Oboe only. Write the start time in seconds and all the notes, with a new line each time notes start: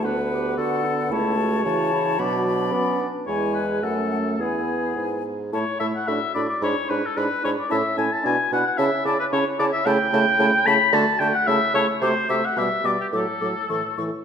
0.04 B4
0.57 A4
1.13 C#5
2.21 D5
2.73 D5
3.26 C#5
3.54 B4
3.83 A4
4.40 G#4
5.54 C#5
5.80 E5
5.95 F#5
6.08 E5
6.34 D5
6.49 D5
6.63 C#5
6.89 B4
7.05 A4
7.16 B4
7.44 C#5
7.59 D5
7.71 E5
7.98 G#5
8.12 A5
8.26 G#5
8.53 F#5
8.67 F#5
8.78 E5
9.05 D5
9.19 B4
9.32 C#5
9.59 D5
9.73 E5
9.86 G5
10.66 B5
10.93 A5
11.19 G5
11.33 F#5
11.47 E5
11.74 C#5
12.02 C5
12.30 E5
12.45 F#5
12.58 E5
12.86 D5
13.01 G4
13.15 A4